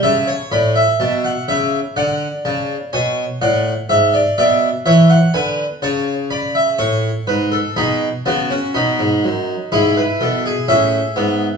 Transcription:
0.03 0.33 C#3 medium
0.03 0.27 E5 medium
0.03 0.33 A5 medium
0.27 0.51 C#5 medium
0.52 0.81 A2 medium
0.52 0.75 D5 medium
0.52 0.81 B5 medium
0.76 1.47 E5 medium
1.00 1.30 B2 medium
1.00 1.23 A5 medium
1.24 1.47 F#5 medium
1.48 1.78 C#3 medium
1.48 1.78 E5 medium
1.96 2.26 D3 medium
1.96 2.90 D5 medium
1.96 2.26 F#5 medium
2.45 2.75 C#3 medium
2.45 2.75 A5 medium
2.93 3.23 B2 medium
2.93 3.23 C#5 medium
2.93 3.23 G#5 medium
3.41 3.71 A2 medium
3.41 3.71 D5 medium
3.41 3.71 F#5 medium
3.89 4.19 G#2 medium
3.89 4.19 E5 medium
4.14 4.37 D5 medium
4.38 4.68 B2 medium
4.38 4.68 D5 medium
4.38 4.68 E5 medium
4.86 5.16 E3 medium
4.86 5.16 C#5 medium
4.86 5.09 E5 medium
5.10 5.33 F#5 medium
5.34 5.64 D3 medium
5.34 5.64 B4 medium
5.34 5.64 G#5 medium
5.82 6.76 C#3 medium
5.82 6.13 C#5 medium
5.82 6.13 A5 medium
6.31 6.54 D5 medium
6.31 6.61 B5 medium
6.55 6.79 E5 medium
6.78 7.09 A2 medium
6.78 7.09 C#5 medium
6.78 7.74 C#6 medium
7.27 7.58 G#2 medium
7.27 7.51 B4 medium
7.52 7.76 A4 medium
7.76 8.07 B2 medium
7.76 8.07 D#4 medium
7.76 8.07 G#4 medium
7.76 8.07 B5 medium
8.26 8.56 C#3 medium
8.26 8.49 B3 medium
8.26 9.68 F#4 medium
8.26 8.56 A5 medium
8.50 8.74 C#4 medium
8.74 8.98 B2 medium
8.74 9.69 D#4 medium
8.74 9.69 B5 medium
8.99 9.23 G#2 medium
9.24 9.54 F#2 medium
9.72 10.02 G#2 medium
9.72 10.65 E4 medium
9.72 9.95 G#4 medium
9.72 10.65 B5 medium
9.97 10.20 B4 medium
10.21 10.50 B2 medium
10.21 10.43 A4 medium
10.46 11.57 G#4 medium
10.68 10.98 A2 medium
10.68 10.98 C#4 medium
10.68 11.57 E5 medium
11.16 11.46 G#2 medium
11.16 11.45 B3 medium

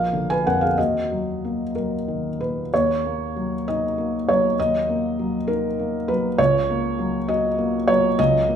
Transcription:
0.00 0.73 A#1 medium
0.00 0.32 F3 soft
0.00 0.26 A#4 medium
0.00 0.29 F5 medium
0.13 0.65 D3 soft
0.30 0.45 B4 medium
0.30 0.45 G#5 medium
0.47 0.79 F2 soft
0.47 0.61 A#4 medium
0.47 0.62 F#5 medium
0.61 0.77 G#4 medium
0.61 0.78 F5 medium
0.78 2.68 D#2 soft
0.78 1.71 F#4 soft
0.78 1.75 D#5 medium
1.11 1.62 F#3 soft
1.45 1.95 A#3 soft
1.75 2.27 F#3 soft
1.75 2.40 A#4 medium
2.08 2.59 D#3 soft
2.41 2.72 A#2 soft
2.41 2.72 B4 medium
2.74 4.54 D#2 medium
2.74 3.67 C#5 medium
3.06 3.55 A#3 soft
3.36 3.85 F#3 soft
3.68 4.16 D#4 soft
3.68 4.28 D#5 medium
3.98 4.46 A#3 soft
4.29 4.77 F#3 soft
4.29 4.58 C#5 medium
4.59 6.36 D#2 medium
4.59 5.49 D#5 medium
4.90 5.37 A#3 soft
5.19 5.67 F#3 soft
5.48 5.96 D#4 soft
5.48 6.08 A#4 medium
5.79 6.27 A#3 soft
6.08 6.38 F#3 medium
6.08 6.38 B4 medium
6.38 8.14 C#2 medium
6.38 7.28 C#5 loud
6.70 7.17 A#3 soft
6.99 7.46 F#3 soft
7.28 7.76 F#4 soft
7.28 7.88 D#5 medium
7.58 8.06 A#3 soft
7.88 8.36 F#3 medium
7.88 8.18 C#5 loud
8.19 8.56 C#2 medium
8.19 8.56 D#5 loud
8.48 8.56 A#3 medium

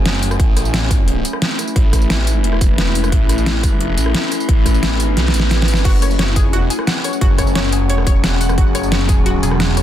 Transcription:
0.00 0.38 F#1 loud
0.00 0.36 F#3 medium
0.00 5.85 A3 medium
0.00 0.36 C#4 medium
0.00 0.38 C#4 medium
0.00 1.13 F#4 medium
0.00 0.36 G#4 medium
0.00 1.19 F#5 medium
0.06 snare loud
0.06 closed hi-hat medium
0.23 open hi-hat medium
0.23 tambourine medium
0.31 cross-stick medium
0.31 tambourine soft
0.40 1.23 A1 medium
0.40 5.81 A3 medium
0.40 9.83 C#4 medium
0.40 5.81 E4 medium
0.40 5.81 B4 medium
0.40 kick loud
0.40 closed hi-hat medium
0.53 6.43 E4 medium
0.53 cross-stick soft
0.53 closed hi-hat medium
0.53 tambourine medium
0.65 tambourine soft
0.74 snare loud
0.74 closed hi-hat medium
0.91 6.60 E5 medium
0.91 kick loud
0.91 closed hi-hat medium
0.91 tambourine medium
1.08 closed hi-hat medium
1.25 closed hi-hat medium
1.25 tambourine medium
1.33 cross-stick soft
1.42 snare loud
1.42 closed hi-hat medium
1.59 cross-stick soft
1.59 open hi-hat medium
1.59 tambourine medium
1.68 tambourine soft
1.76 2.60 A1 loud
1.76 kick loud
1.76 closed hi-hat medium
1.93 kick medium
1.93 cross-stick soft
1.93 closed hi-hat medium
1.93 tambourine medium
2.02 tambourine soft
2.10 snare loud
2.10 closed hi-hat medium
2.27 closed hi-hat medium
2.27 tambourine medium
2.44 closed hi-hat medium
2.53 cross-stick soft
2.61 3.11 E1 loud
2.61 kick loud
2.61 closed hi-hat loud
2.61 tambourine medium
2.78 snare loud
2.78 closed hi-hat medium
2.95 open hi-hat medium
2.95 tambourine medium
3.04 cross-stick medium
3.04 tambourine soft
3.12 3.96 A1 loud
3.12 kick loud
3.12 closed hi-hat medium
3.29 cross-stick soft
3.29 closed hi-hat loud
3.29 tambourine medium
3.38 tambourine soft
3.46 snare loud
3.46 closed hi-hat medium
3.63 kick loud
3.63 closed hi-hat loud
3.63 tambourine medium
3.81 closed hi-hat medium
3.97 4.13 A1 loud
3.97 closed hi-hat loud
3.97 tambourine medium
4.06 cross-stick soft
4.15 snare loud
4.15 closed hi-hat medium
4.32 cross-stick soft
4.32 open hi-hat medium
4.32 tambourine medium
4.40 tambourine soft
4.49 4.64 A1 loud
4.49 kick loud
4.49 closed hi-hat medium
4.66 5.15 A1 loud
4.66 kick medium
4.66 cross-stick soft
4.66 closed hi-hat medium
4.66 tambourine medium
4.74 tambourine soft
4.83 snare loud
4.83 closed hi-hat medium
5.00 closed hi-hat loud
5.00 tambourine medium
5.17 5.33 B1 loud
5.17 snare medium
5.17 closed hi-hat medium
5.28 snare medium
5.34 5.84 A1 loud
5.34 closed hi-hat loud
5.34 tambourine medium
5.40 snare medium
5.51 snare loud
5.51 closed hi-hat medium
5.51 tambourine soft
5.62 snare medium
5.68 open hi-hat medium
5.68 tambourine medium
5.74 snare loud
5.74 tambourine soft
5.85 6.44 F#1 loud
5.85 9.83 F#3 medium
5.85 8.55 C#4 medium
5.85 5.92 F#4 loud
5.85 9.83 G#4 loud
5.85 kick loud
5.85 closed hi-hat medium
5.85 crash medium
6.02 9.83 F#4 loud
6.02 6.14 C#5 medium
6.02 cross-stick soft
6.02 closed hi-hat medium
6.02 tambourine medium
6.11 tambourine soft
6.15 9.83 A3 medium
6.15 9.83 F#5 medium
6.19 6.26 C#5 medium
6.19 snare loud
6.19 closed hi-hat medium
6.36 6.52 G#4 medium
6.36 kick loud
6.36 closed hi-hat medium
6.36 tambourine medium
6.44 6.69 F1 loud
6.53 6.69 F#4 loud
6.53 closed hi-hat medium
6.70 6.86 G#4 medium
6.70 closed hi-hat loud
6.70 tambourine medium
6.79 cross-stick medium
6.87 7.03 F#5 medium
6.87 snare loud
6.87 closed hi-hat medium
7.04 7.16 C#5 medium
7.04 cross-stick soft
7.04 open hi-hat medium
7.04 tambourine medium
7.13 tambourine soft
7.21 7.80 F#1 loud
7.21 7.28 F#4 loud
7.21 kick loud
7.21 closed hi-hat medium
7.38 7.50 C#5 medium
7.38 kick medium
7.38 cross-stick soft
7.38 closed hi-hat loud
7.38 tambourine medium
7.47 tambourine soft
7.55 7.67 C#5 medium
7.55 snare loud
7.55 closed hi-hat medium
7.73 7.89 G#4 medium
7.73 closed hi-hat loud
7.73 tambourine medium
7.80 8.05 F1 loud
7.90 8.01 C#5 medium
7.90 closed hi-hat medium
7.98 cross-stick soft
8.07 8.56 E1 loud
8.07 8.14 C#5 loud
8.07 kick loud
8.07 closed hi-hat medium
8.07 tambourine medium
8.24 8.40 F#5 medium
8.24 snare loud
8.24 closed hi-hat medium
8.41 8.48 F#5 medium
8.41 open hi-hat medium
8.41 tambourine medium
8.49 cross-stick medium
8.49 tambourine soft
8.58 9.42 F#1 loud
8.58 9.83 B3 medium
8.58 8.65 F#4 loud
8.58 kick loud
8.58 closed hi-hat medium
8.75 8.87 C#5 medium
8.75 cross-stick soft
8.75 closed hi-hat loud
8.75 tambourine medium
8.83 tambourine soft
8.92 8.99 C#5 medium
8.92 snare loud
8.92 closed hi-hat medium
9.09 9.25 G#4 medium
9.09 kick loud
9.09 closed hi-hat medium
9.09 tambourine medium
9.26 9.42 F#4 loud
9.26 closed hi-hat medium
9.43 9.83 E1 loud
9.43 9.59 G#4 medium
9.43 closed hi-hat medium
9.43 tambourine medium
9.52 cross-stick soft
9.60 9.76 F#5 medium
9.60 snare loud
9.60 closed hi-hat medium
9.77 9.83 C#5 medium
9.77 cross-stick soft
9.77 open hi-hat medium
9.77 tambourine medium

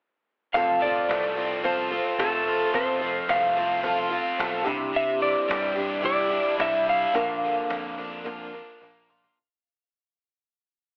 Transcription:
0.54 1.00 F1 medium
0.54 1.91 F2 medium
0.54 0.82 F3 medium
0.54 0.82 C4 medium
0.54 0.83 F4 medium
0.54 0.82 A4 medium
0.54 0.83 F5 medium
0.54 cajon bass loud
0.81 2.18 F3 medium
0.81 1.34 A4 soft
0.81 1.60 D5 loud
0.81 cajon slap soft
0.85 1.37 C4 soft
0.85 1.35 F4 soft
1.09 1.99 C2 medium
1.09 2.19 A3 medium
1.09 cajon slap loud
1.35 1.92 C4 medium
1.35 1.63 C4 soft
1.35 1.63 F4 soft
1.35 1.63 A4 soft
1.35 cajon slap soft
1.63 1.91 F3 medium
1.63 1.91 C4 medium
1.63 1.90 F4 medium
1.63 2.47 F4 medium
1.63 1.89 A4 medium
1.63 2.21 C5 medium
1.63 cajon bass medium
1.63 cajon slap soft
1.91 3.56 C4 medium
1.91 2.18 C4 soft
1.91 2.18 F4 soft
1.91 2.18 A4 medium
2.18 2.63 F1 medium
2.18 2.72 F3 medium
2.18 3.27 A3 medium
2.18 2.74 C4 medium
2.18 2.73 F4 medium
2.18 2.70 A4 medium
2.18 2.73 A4 medium
2.18 cajon slap loud
2.46 3.82 F4 medium
2.46 cajon slap soft
2.73 3.19 F1 medium
2.73 4.11 F2 medium
2.73 3.01 F3 medium
2.73 3.01 C4 medium
2.73 3.00 F4 medium
2.73 2.99 A4 medium
2.73 3.31 C5 medium
2.73 cajon bass loud
3.00 4.39 F3 medium
3.00 3.58 C4 soft
3.00 3.56 F4 soft
3.00 3.55 A4 soft
3.29 4.18 C2 medium
3.29 4.38 A3 medium
3.29 4.63 F5 medium
3.29 cajon slap loud
3.56 4.10 C4 medium
3.56 3.82 C4 soft
3.56 3.82 F4 soft
3.56 3.84 A4 soft
3.56 cajon slap soft
3.83 4.11 F3 medium
3.83 4.11 C4 medium
3.83 4.66 F4 medium
3.83 4.10 F4 medium
3.83 4.09 A4 medium
3.83 cajon bass medium
4.10 4.66 C4 medium
4.10 4.38 C4 medium
4.10 4.38 F4 medium
4.10 4.38 A4 medium
4.10 cajon slap soft
4.38 4.61 B1 medium
4.38 4.66 F3 medium
4.38 4.66 A3 medium
4.38 4.65 C4 medium
4.38 4.65 F4 medium
4.38 4.64 A4 medium
4.38 cajon slap loud
4.64 5.34 C2 loud
4.64 4.91 C3 medium
4.64 5.77 G3 medium
4.64 5.77 D4 medium
4.64 5.76 E4 medium
4.64 5.74 G4 medium
4.64 cajon bass medium
4.68 5.77 C3 medium
4.93 6.31 C3 medium
4.93 5.22 E5 medium
4.93 cajon slap soft
5.21 6.59 E3 medium
5.21 6.04 D5 medium
5.21 cajon slap soft
5.48 6.39 G2 medium
5.48 6.60 G3 medium
5.48 cajon slap loud
5.75 6.31 D4 medium
5.75 6.01 D4 soft
5.75 6.02 E4 soft
5.75 6.02 G4 medium
5.75 cajon slap soft
6.01 6.30 C3 medium
6.01 6.30 G3 medium
6.01 6.30 D4 medium
6.01 6.29 E4 medium
6.01 6.87 E4 medium
6.01 6.28 G4 medium
6.01 cajon bass medium
6.01 cajon slap soft
6.05 6.56 D5 medium
6.30 6.57 D4 soft
6.30 7.98 D4 medium
6.30 6.57 E4 soft
6.30 6.58 G4 soft
6.30 cajon slap soft
6.57 7.04 C2 medium
6.57 7.13 G3 medium
6.57 7.14 D4 medium
6.57 7.14 E4 medium
6.57 7.15 G4 medium
6.57 cajon slap loud
6.61 7.15 G3 medium
6.61 6.86 E5 medium
6.87 7.15 E4 medium
6.87 9.06 F5 medium
6.87 cajon slap soft
7.13 7.60 A#1 medium
7.13 7.97 A#2 medium
7.13 8.54 A#2 medium
7.13 7.97 D3 medium
7.13 7.97 F3 medium
7.13 7.98 A#3 medium
7.13 7.97 D4 medium
7.13 7.97 A#4 medium
7.13 cajon bass loud
7.44 8.82 D3 medium
7.70 8.61 F2 medium
7.70 8.79 A#3 medium
7.70 cajon slap loud
7.98 8.24 F3 soft
7.98 8.24 A#3 soft
7.98 8.52 D4 medium
7.98 8.24 D4 soft
7.98 8.24 A#4 medium
8.24 8.53 A#2 medium
8.24 8.53 D3 medium
8.24 8.53 F3 medium
8.24 8.53 A#3 medium
8.24 8.53 D4 medium
8.24 9.08 F4 medium
8.24 8.52 A#4 medium
8.24 cajon bass medium
8.53 8.80 F3 soft
8.53 8.80 A#3 medium
8.53 9.37 D4 medium
8.53 8.81 D4 medium
8.53 8.81 A#4 medium
8.81 9.27 A#1 medium
8.81 9.37 F3 medium
8.81 9.36 A#3 medium
8.81 9.37 A#3 medium
8.81 9.37 D4 medium
8.81 9.38 A#4 medium
8.81 cajon slap soft
8.81 cajon slap medium
9.09 9.37 F4 medium
9.09 cajon bass medium
9.24 cajon bass medium

